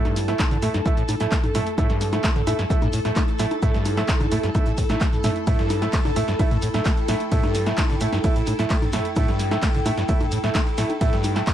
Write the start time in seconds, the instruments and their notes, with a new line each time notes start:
Already playing: ambient pad E4 A4 A5, string machine A4
0.05 acid bass G2, snare, closed hi-hat, high conga, shekere
0.16 snare, open hi-hat, shaker, shekere
0.28 acid bass A2, grand piano A3 E4 E5, snare, closed hi-hat, shekere
0.39 acid bass A3, kick, snare, clap, closed hi-hat, high conga, shekere, shaker
0.51 acid bass D3, snare, closed hi-hat, mid tom, shekere
0.62 acid bass A2, grand piano A3 E4 E5, open hi-hat, shaker, shekere
0.74 acid bass G2, snare, closed hi-hat, high conga, shekere
0.85 acid bass A2, grand piano A3 E4 E5, kick, closed hi-hat, shekere, shaker
0.97 acid bass A2, closed hi-hat, shekere
1.08 acid bass A2, open hi-hat, high conga, shaker, shekere
1.20 acid bass A2, grand piano A3 E4 E5, snare, closed hi-hat, shekere
1.31 acid bass A3, kick, snare, clap, closed hi-hat, shekere, shaker
1.43 snare, closed hi-hat, mid tom, high conga, shekere
1.54 acid bass A2, grand piano A3 E4 E5, snare, mid tom, open hi-hat, shekere, shaker
1.66 closed hi-hat, shekere
1.78 acid bass A2, grand piano A3 E4 E5, kick, closed hi-hat, high conga, shekere, shaker
1.89 acid bass G2, snare, closed hi-hat, shekere
2.01 snare, open hi-hat, shaker, shekere
2.12 acid bass A2, grand piano A3 E4 E5, snare, closed hi-hat, high conga, shekere
2.24 acid bass A3, kick, snare, clap, closed hi-hat, shaker, shekere
2.35 acid bass D3, snare, closed hi-hat, mid tom, shekere
2.47 acid bass A2, grand piano A3 E4 E5, open hi-hat, high conga, shekere, shaker
2.59 acid bass G2, snare, closed hi-hat, shekere
2.70 acid bass A2, grand piano A3 E4 E5, kick, closed hi-hat, shekere, shaker
2.81 acid bass A2, closed hi-hat, mid tom, high conga, shekere
2.93 acid bass A2, open hi-hat, shekere, shaker
3.05 acid bass A2, grand piano A3 E4 E5, snare, closed hi-hat, shekere
3.16 acid bass A3, kick, snare, clap, closed hi-hat, high conga, shaker, shekere
3.28 snare, closed hi-hat, shekere
3.39 acid bass A2, grand piano A3 E4 E5, snare, open hi-hat, shekere, shaker
3.50 closed hi-hat, high conga, shekere
3.62 acid bass A2, grand piano A3 E4 E5, kick, closed hi-hat, shekere, shaker
3.74 acid bass G2, snare, closed hi-hat, shekere
3.85 snare, open hi-hat, high conga, shekere, shaker
3.97 acid bass A2, grand piano A3 E4 E5, snare, clap, closed hi-hat, shekere
4.08 acid bass A3, kick, snare, clap, closed hi-hat, shaker, shekere
4.20 acid bass D3, snare, closed hi-hat, mid tom, high conga, shekere
4.32 acid bass A2, grand piano A3 E4 E5, open hi-hat, shekere, shaker
4.43 acid bass G2, snare, closed hi-hat, shekere
4.55 acid bass A2, grand piano A3 E4 E5, kick, closed hi-hat, high conga, shaker, shekere
4.66 acid bass A2, closed hi-hat, shekere
4.77 acid bass A2, kick, open hi-hat, shekere, shaker
4.89 acid bass A2, grand piano A3 E4 E5, snare, closed hi-hat, high conga, shekere
5.00 acid bass A3, kick, snare, clap, closed hi-hat, shekere, shaker
5.13 snare, closed hi-hat, mid tom, shekere
5.23 acid bass A2, grand piano A3 E4 E5, snare, mid tom, open hi-hat, high conga, shaker, shekere
5.36 closed hi-hat, shekere
5.47 acid bass A2, grand piano A3 E4 E5, kick, closed hi-hat, ride, shekere, shaker
5.59 acid bass G2, snare, closed hi-hat, shekere
5.70 snare, open hi-hat, high conga, shekere, shaker
5.82 acid bass A2, grand piano A3 E4 E5, snare, closed hi-hat, shekere
5.93 acid bass A3, kick, snare, clap, closed hi-hat, ride, shekere, shaker
6.05 acid bass D3, snare, closed hi-hat, mid tom, high conga, shekere
6.16 acid bass A2, grand piano A3 E4 E5, open hi-hat, shaker, shekere
6.28 acid bass G2, snare, closed hi-hat, shekere
6.39 acid bass A2, grand piano A3 E4 E5, kick, closed hi-hat, ride, high conga, shekere, shaker
6.51 acid bass A2, ambient pad G5, closed hi-hat, mid tom, shekere
6.62 acid bass A2, open hi-hat, shekere, shaker
6.74 acid bass A2, grand piano A3 E4 E5, snare, closed hi-hat, high conga, shekere
6.85 acid bass A3, kick, snare, clap, closed hi-hat, ride, shaker, shekere
6.96 snare, closed hi-hat, shekere
7.08 acid bass A2, grand piano A3 E4 E5, snare, open hi-hat, high conga, shekere, shaker
7.20 closed hi-hat, shekere
7.32 acid bass A2, grand piano A3 E4 E5, kick, closed hi-hat, ride, shekere, shaker
7.43 acid bass G2, snare, closed hi-hat, high conga, shekere
7.55 snare, open hi-hat, shekere, shaker
7.66 acid bass A2, grand piano A3 E4 E5, snare, closed hi-hat, shekere
7.77 acid bass A3, kick, snare, clap, closed hi-hat, ride, high conga, shaker, shekere
7.89 acid bass D3, snare, closed hi-hat, mid tom, shekere
8.00 acid bass A2, grand piano A3 E4 E5, open hi-hat, shaker, shekere
8.13 acid bass G2, snare, closed hi-hat, high conga, shekere
8.24 acid bass A2, grand piano A3 E4 E5, kick, closed hi-hat, ride, shekere, shaker
8.36 acid bass A2, closed hi-hat, shekere
8.46 acid bass A2, open hi-hat, high conga, shekere, shaker
8.59 acid bass A2, grand piano A3 E4 E5, snare, closed hi-hat, shekere
8.70 acid bass A3, kick, snare, clap, closed hi-hat, ride, shaker, shekere
8.82 snare, closed hi-hat, mid tom, high conga, shekere
8.93 acid bass A2, grand piano A3 E4 E5, snare, mid tom, open hi-hat, shekere, shaker
9.05 closed hi-hat, shekere
9.16 acid bass A2, grand piano A3 E4 E5, kick, closed hi-hat, ride, high conga, shaker, shekere
9.28 acid bass G2, snare, closed hi-hat, shekere
9.39 snare, open hi-hat, shekere, shaker
9.51 acid bass A2, grand piano A3 E4 E5, snare, closed hi-hat, high conga, shekere
9.62 acid bass A3, kick, snare, clap, closed hi-hat, ride, shaker, shekere
9.74 acid bass D3, snare, closed hi-hat, mid tom, shekere
9.85 acid bass A2, grand piano A3 E4 E5, open hi-hat, high conga, shaker, shekere
9.97 acid bass G2, snare, closed hi-hat, shekere
10.08 acid bass A2, grand piano A3 E4 E5, kick, closed hi-hat, ride, shekere, shaker
10.20 acid bass A2, closed hi-hat, mid tom, high conga, shekere
10.31 acid bass A2, open hi-hat, shaker, shekere
10.43 acid bass A2, grand piano A3 E4 E5, snare, closed hi-hat, shekere
10.55 acid bass A3, kick, snare, clap, closed hi-hat, ride, high conga, shekere, shaker
10.67 snare, closed hi-hat, shekere
10.78 acid bass A2, grand piano A3 E4 E5, snare, open hi-hat, shekere, shaker
10.89 closed hi-hat, high conga, shekere
11.01 acid bass A2, grand piano A3 E4 E5, kick, closed hi-hat, ride, shekere, shaker
11.13 acid bass G2, snare, closed hi-hat, shekere
11.24 snare, open hi-hat, high conga, shekere, shaker
11.36 acid bass A2, grand piano A3 E4 E5, snare, clap, closed hi-hat, shekere
11.47 acid bass A3, kick, snare, clap, closed hi-hat, ride, shekere, shaker